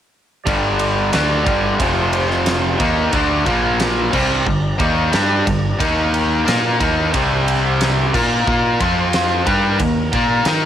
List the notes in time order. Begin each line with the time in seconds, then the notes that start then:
0.44 G1 G2 G4 D5 A#5, kick, ride
0.48 D3 G3
0.79 ride
1.13 D2 D3 A3 D4, snare, ride
1.46 G1 G2 D3 G3, kick, ride
1.79 F1 F2 C3 F3 F4 C5 C6, kick, ride
2.13 ride
2.31 snare
2.46 snare, ride
2.79 D#2 D#3 A#3 D#4 D5 A#5, kick, ride
2.84 G4
3.13 D2 D3 A3 D4, kick, ride
3.46 A#1 A#2 F3 A#3 F4 A#4, kick, ride
3.80 snare, ride
4.13 C2 C3 G3 C4 G4, kick, crash
4.17 D5
4.46 G1 G2 D3, kick
4.78 D#2 D#3 A#3 D#4, kick, ride
5.11 G2 G3 D4 G4, snare, ride
5.46 G1 G2 D3, kick, ride
5.79 D#2 D#3 A#3 D#4 A#4, kick, ride
6.14 ride
6.45 A#2 A#3 F4 A#4, snare, ride
6.79 D#2 D#3 A#3 D#4, kick, ride
7.14 C2 C3 G3 C4 G4 C5 C6, kick, ride
7.48 ride
7.81 snare, ride
8.13 A#2 A#3 D#4 F4 A#4 A#5, kick, crash
8.47 A#2 A#3 F4 A#4, kick
8.80 F2 F3 C4 F4 C5 C6, kick, ride
9.13 snare, ride
9.45 G2 D#3 G3 D4 G4 A#4 A#5, kick, ride
9.79 D#2 D#3 A#3, kick, ride
10.13 A#2 A#3 F4 A#4, kick, ride
10.45 D#3 D#4 A#4 D#5, snare, ride